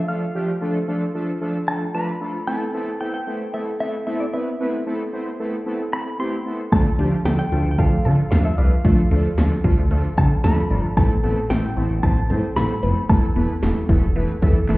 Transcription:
0.08 F3 A3 D4 F4 A4 F5
0.35 F3 A3 D4 F4 G4
0.61 F3 A3 D4 F4 A4
0.88 F3 A3 D4 F4 A4
1.14 F3 A3 D4 F4 A4
1.41 F3 A3 D4 F4 A4
1.68 F3 A3 D4 F4 A4 A5
1.94 F3 A3 D4 F4 B4 B5
2.21 F3 A3 D4 F4 A4
2.47 A3 B3 C4 E4 A4 A5
2.74 A3 B3 C4 E4 A4
3.00 A3 B3 C4 E4 A4 G5
3.14 G5
3.27 A3 B3 C4 E4 A4
3.54 A3 B3 C4 E4 A4 E5
3.80 A3 B3 C4 E4 A4 E5
4.06 A3 B3 C4 E4 A4 E5
4.20 D5
4.33 A3 B3 C4 E4 B4 E5
4.60 A3 B3 C4 E4 B4
4.86 A3 B3 C4 E4 A4
5.13 A3 B3 C4 E4 C5
5.39 A3 B3 C4 E4 A4
5.66 A3 B3 C4 E4 A4
5.92 A3 B3 C4 E4 A4 B5
6.19 A3 B3 C4 E4 G4 C6
6.46 A3 B3 C4 E4 A4
6.72 D2 F3 A3 D4 F4 A4 A5, kick, closed hi-hat
6.86 closed hi-hat
6.99 D2 F3 A3 D4 F4 G4, closed hi-hat
7.12 closed hi-hat
7.25 D2 F3 A3 D4 F4 A4 G5, snare, closed hi-hat
7.39 G5, closed hi-hat
7.52 D2 F3 A3 D4 F4 A4, closed hi-hat
7.65 D2, closed hi-hat
7.71 G5
7.78 D2 F3 A3 D4 F4 A4 F5, kick, closed hi-hat
7.92 closed hi-hat
8.05 D3 F3 A3 D4 F4 A4, closed hi-hat
8.18 closed hi-hat
8.31 D2 F3 A3 D4 F4 A4 F5, snare, closed hi-hat
8.45 E5, closed hi-hat
8.58 C2 F3 A3 D4 F4 B4 D5 F5, closed hi-hat
8.71 closed hi-hat
8.85 D2 F3 A3 D4 F4 A4, kick, closed hi-hat
8.98 closed hi-hat
9.11 D2 F3 A3 D4 F4 A4, closed hi-hat
9.24 closed hi-hat
9.38 D2 F3 A3 D4 F4 A4, snare, closed hi-hat
9.51 closed hi-hat
9.64 D2 F3 A3 D4 F4 A4, kick, closed hi-hat
9.78 D2, closed hi-hat
9.91 D2 F3 A3 D4 F4 A4, closed hi-hat
10.04 closed hi-hat
10.17 D3 F3 A3 D4 F4 A4 A5, kick, closed hi-hat
10.31 closed hi-hat
10.44 D2 F3 A3 D4 F4 A4 B5, snare, closed hi-hat
10.57 closed hi-hat
10.70 G1 F3 A3 D4 F4 A4 D5, closed hi-hat
10.83 closed hi-hat
10.97 A1 A3 B3 C4 E4 A4 A5, kick, closed hi-hat
11.10 closed hi-hat
11.23 A1 A3 B3 C4 E4 A4, closed hi-hat
11.36 closed hi-hat
11.50 A1 A3 B3 C4 E4 A4 G5, snare, closed hi-hat
11.63 closed hi-hat
11.77 A1 A3 B3 C4 E4 A4, closed hi-hat
11.90 A1, closed hi-hat
12.03 A1 A3 B3 C4 E4 C5 A5, kick, closed hi-hat
12.17 closed hi-hat
12.30 A2 A3 B3 C4 E4 A4 C5, closed hi-hat
12.43 closed hi-hat
12.56 A1 A3 B3 C4 E4 A4 B5, snare, closed hi-hat
12.70 closed hi-hat
12.83 F1 A3 B3 C4 E4 A4 B4, closed hi-hat
12.96 closed hi-hat
13.09 E1 E3 A3 B3 E4 A4 A5, kick, closed hi-hat
13.23 closed hi-hat
13.36 E1 E3 A3 B3 E4 B4, closed hi-hat
13.49 closed hi-hat
13.62 E1 E3 A3 B3 E4 A4, snare, closed hi-hat
13.76 closed hi-hat
13.89 E1 E3 A3 B3 E4 A4, kick, open hi-hat
14.02 E1, closed hi-hat
14.15 E1 E3 A3 B3 E4 B4, closed hi-hat
14.29 closed hi-hat
14.42 E2 E3 A3 B3 E4 A4, kick, closed hi-hat
14.56 closed hi-hat
14.69 E1 E3 A3 B3 E4 A4, clap, closed hi-hat

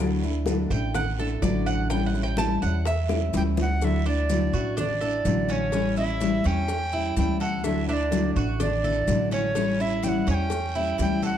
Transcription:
Already playing: D2
0.00 D3 F#3 A3 D4 E4
0.23 A3 D4 E4, high bongo, high conga, maracas
0.46 D3 F#3 A3 D4 E4, high bongo, high conga, short guiro, maracas
0.70 A1 A3 D4 E4 G5, high bongo, short guiro, maracas
0.94 F#5, muted nylon-string guitar stroke, high bongo, high conga, low conga, long guiro, claves, maracas
1.18 A3 D4 E4 A4, high bongo, high conga, maracas
1.42 A1 D3 F#3 A3 D4 E4 D5, high bongo, low bongo, high conga, short guiro, maracas
1.66 F#5, short guiro, claves, maracas
1.90 E3 G3 C#4 E4 G5, high bongo, high conga, long guiro, maracas
2.06 F#5
2.14 G3 C#4 E4, high bongo, high conga, maracas
2.23 G5
2.37 E3 G3 C#4 E4 A5, high bongo, high conga, short guiro, claves, maracas
2.62 E2 G3 C#4 E4 F#5, high bongo, high conga, short guiro, maracas
2.86 E5, muted nylon-string guitar stroke, high bongo, high conga, long guiro, maracas
3.09 G3 C#4 E4, high bongo, high conga, claves, maracas
3.33 D2 E3 G3 C#4 E4 G5, low bongo, high conga, short guiro, maracas
3.57 low bongo, low conga, short guiro, maracas
3.62 F#5
3.82 D3 F#3 A3 D4 E4 E5, cowbell, high conga, long guiro, maracas
4.05 A3 D4 E4 D5, high conga, maracas
4.29 D3 F#3 A3 D4 E4, cowbell, high conga, short guiro, maracas
4.53 A1 A3 D4 E4 F#4, short guiro, maracas
4.77 D4 D5, muted nylon-string guitar stroke, cowbell, high conga, low conga, long guiro, maracas
5.01 A3 D4 E4 A4, high conga, maracas
5.25 A1 D3 F#3 A3 D4 E4, cowbell, high conga, short guiro, maracas
5.49 C#4 C#5, cowbell, high conga, short guiro, maracas
5.72 E3 G3 C#4 E4, cowbell, high conga, long guiro, maracas
5.97 G3 C#4 E4 E5, high conga, maracas
6.20 E3 G3 C#4 E4, cowbell, high conga, short guiro, maracas
6.44 E2 G3 C#4 E4 G5, cowbell, high conga, short guiro, maracas
6.68 muted nylon-string guitar stroke, cowbell, high conga, long guiro, maracas
6.92 G3 C#4 E4, high conga, maracas
7.17 D2 E3 G3 C#4 E4 G5, cowbell, high conga, short guiro, maracas
7.40 A4 F#5, cowbell, high conga, short guiro, maracas
7.64 D3 F#3 A3 D4 E4 E5, cowbell, high conga, long guiro, maracas
7.87 A3 D4 E4 E5, high conga, maracas
7.93 D5
8.10 D3 F#3 A3 D4 E4, cowbell, high conga, short guiro, maracas
8.35 A1 A3 D4 E4 F#4, short guiro, maracas
8.59 D4 D5, muted nylon-string guitar stroke, cowbell, high conga, low conga, long guiro, maracas
8.83 A3 D4 E4 A4, high conga, low conga, maracas
9.08 A1 D3 F#3 A3 D4 E4, cowbell, high conga, short guiro, maracas
9.31 C#4 C#5, cowbell, high conga, short guiro, maracas
9.55 E3 G3 C#4 E4, cowbell, high conga, long guiro, maracas
9.79 G3 C#4 E4 E5, high conga, maracas
10.03 E3 G3 C#4 E4 G5, cowbell, high conga, short guiro, maracas
10.08 F#5
10.27 E2 G3 C#4 E4 G#5, cowbell, high conga, short guiro, maracas
10.34 G5
10.50 muted nylon-string guitar stroke, cowbell, high conga, long guiro, maracas
10.75 G3 C#4 E4, high conga, maracas
10.98 D2 E3 G3 C#4 E4 G5, cowbell, high conga, short guiro, maracas
11.22 A4 F#5, cowbell, high conga, short guiro, maracas

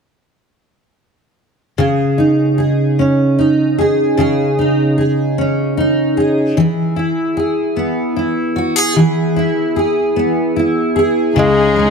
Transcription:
1.78 C#3 G#4
2.18 D#4
2.58 G#4
2.99 C#4
3.39 D#4
3.78 G#4
4.17 C#3 G#4
4.59 D#4
4.98 G#4
5.38 C#4
5.77 D#4
6.17 G#4
6.57 E3 G#4
6.96 E4
7.37 G#4
7.76 B3
8.16 E4
8.56 F#4
8.76 G#4
8.96 E3 G#4
9.36 E4
9.76 G#4
10.16 B3
10.56 E4
10.96 G#4
11.36 C#2 C#3 G#3 D#4 G#4
11.76 G#3

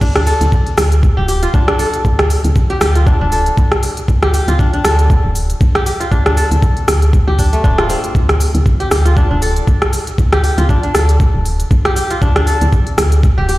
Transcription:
Already playing: F4 G4 A4
0.01 D2 D4, kick, crash, shaker
0.15 D4, cross-stick, closed hi-hat
0.27 A4, open hi-hat, shaker
0.41 D2, closed hi-hat, shaker
0.52 kick, shaker
0.67 closed hi-hat
0.78 D2, cross-stick, open hi-hat, shaker
0.92 closed hi-hat, shaker
1.03 kick, shaker
1.17 D1 G4
1.28 G4, open hi-hat, shaker
1.43 F4, closed hi-hat, shaker
1.54 C2 D4, kick, shaker
1.68 D4, cross-stick, closed hi-hat
1.79 A4, open hi-hat, shaker
1.93 closed hi-hat, shaker
2.05 D2, kick, shaker
2.19 cross-stick, closed hi-hat
2.30 open hi-hat, shaker
2.44 D2, closed hi-hat, shaker
2.56 kick, shaker
2.70 G4, closed hi-hat
2.81 D2 G4, cross-stick, open hi-hat, shaker
2.95 F4, closed hi-hat, shaker
3.07 D4, kick, shaker
3.21 D1 D4
3.32 A4, open hi-hat, shaker
3.46 closed hi-hat, shaker
3.57 C2, kick, shaker
3.72 cross-stick, closed hi-hat
3.83 open hi-hat, shaker
3.97 closed hi-hat, shaker
4.08 D2, kick, shaker
4.23 G4, cross-stick, closed hi-hat
4.34 G4, open hi-hat, shaker
4.48 D2 F4, closed hi-hat, shaker
4.59 D4, kick, shaker
4.73 D4, closed hi-hat
4.85 D2 A4, cross-stick, open hi-hat, shaker
4.99 closed hi-hat, shaker
5.10 kick, shaker
5.24 D1
5.35 open hi-hat, shaker
5.50 closed hi-hat, shaker
5.61 C2, kick, shaker
5.75 G4, cross-stick, closed hi-hat
5.86 G4, open hi-hat, shaker
6.00 F4, closed hi-hat, shaker
6.12 D2 D4, kick, shaker
6.26 D4, cross-stick, closed hi-hat
6.37 A4, open hi-hat, shaker
6.51 D2, closed hi-hat, shaker
6.62 kick, shaker
6.77 closed hi-hat
6.88 D2, cross-stick, open hi-hat, shaker
7.02 closed hi-hat, shaker
7.13 kick, shaker
7.28 D2 G4
7.39 D4, kick, open hi-hat, shaker
7.53 A3, closed hi-hat, shaker
7.64 D1 D4, kick, shaker
7.78 F4, cross-stick, closed hi-hat
7.90 C4, open hi-hat, shaker
8.04 closed hi-hat, shaker
8.15 D2, kick, shaker
8.29 cross-stick, closed hi-hat
8.40 open hi-hat, shaker
8.55 D2, closed hi-hat, shaker
8.66 kick, shaker
8.80 G4, closed hi-hat
8.91 D2 G4, cross-stick, open hi-hat, shaker
9.05 F4, closed hi-hat, shaker
9.17 D4, kick, shaker
9.31 D1 D4
9.42 A4, open hi-hat, shaker
9.56 closed hi-hat, shaker
9.67 C2, kick, shaker
9.82 cross-stick, closed hi-hat
9.93 open hi-hat, shaker
10.07 closed hi-hat, shaker
10.18 D2, kick, shaker
10.32 G4, cross-stick, closed hi-hat
10.44 G4, open hi-hat, shaker
10.58 D2 F4, closed hi-hat, shaker
10.69 D4, kick, shaker
10.83 D4, closed hi-hat
10.95 D2 A4, cross-stick, open hi-hat, shaker
11.09 closed hi-hat, shaker
11.20 kick, shaker
11.34 D1
11.45 open hi-hat, shaker
11.60 closed hi-hat, shaker
11.71 C2, kick, shaker
11.85 G4, cross-stick, closed hi-hat
11.96 G4, open hi-hat, shaker
12.11 F4, closed hi-hat, shaker
12.22 D2 D4, kick, shaker
12.36 D4, cross-stick, closed hi-hat
12.47 A4, open hi-hat, shaker
12.61 D2, closed hi-hat, shaker
12.73 kick, shaker
12.87 closed hi-hat
12.98 D2, cross-stick, open hi-hat, shaker
13.12 closed hi-hat, shaker
13.23 kick, shaker
13.38 D1 G4
13.49 G4, open hi-hat, shaker

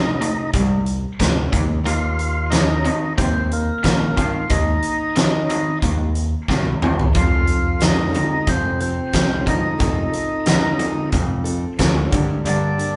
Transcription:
Already playing: C3 A3 D#4
0.21 C3 A3, closed hi-hat
0.53 C2 C3 G3, kick, closed hi-hat
0.86 closed hi-hat
1.20 D2 C3 A3, kick, snare, closed hi-hat
1.52 D#2 D#3 A#3, kick, closed hi-hat
1.84 D#2 D#3 A#3 F4, closed hi-hat
2.19 closed hi-hat
2.50 D#3 C4 D#4, snare, closed hi-hat
2.85 D#3 C4, closed hi-hat
3.18 D#2 D#3 A#3 C4, kick, closed hi-hat
3.52 A#3, closed hi-hat
3.84 A#1 D#3 C4, kick, snare, closed hi-hat
4.17 D#3 C4 F4, kick, closed hi-hat
4.50 D#2 D#3 A#3 D#4, kick, closed hi-hat
4.83 closed hi-hat
5.16 D#3 C4, snare, closed hi-hat
5.50 D#3 C4, closed hi-hat
5.82 D#2 D#3 A#3, kick, closed hi-hat
6.15 closed hi-hat
6.48 C2 D#3 C4, kick, snare
6.66 high tom
6.82 E2 D#3 C4, mid tom
6.99 floor tom
7.13 F2 C3 F3 C4 F4 A4, kick, closed hi-hat
7.46 C4 F4 A4, closed hi-hat
7.78 F2 F3 C4 F4 A4, snare, closed hi-hat
7.82 D3 D#4
8.11 C4 F4 A4, closed hi-hat
8.15 F2 D3
8.47 F2 C3 C4, kick, closed hi-hat
8.79 C4 F4 A4, closed hi-hat
9.11 C2 F2 D3 F3 C4 F4 A4, kick, snare, closed hi-hat
9.46 F2 D3 F3 D#4, kick, closed hi-hat
9.78 F2 F3 C4 D#4 F4 A4, kick, closed hi-hat
9.82 C3
10.12 C4 F4 A4, closed hi-hat
10.45 F2 D3 F3 C4 A4, snare, closed hi-hat
10.79 F2 D3 C4 F4 A4, closed hi-hat
11.12 F2 C3, kick, closed hi-hat
11.44 C4 F4 A4, closed hi-hat
11.77 D2 F2 D3 F3 C4 F4 A4, kick, snare, closed hi-hat
12.11 G2 D3 G3 A#3 D4 G4, kick, closed hi-hat
12.45 G2 D3 D4, closed hi-hat
12.78 G3 A#3 D4 G4, closed hi-hat

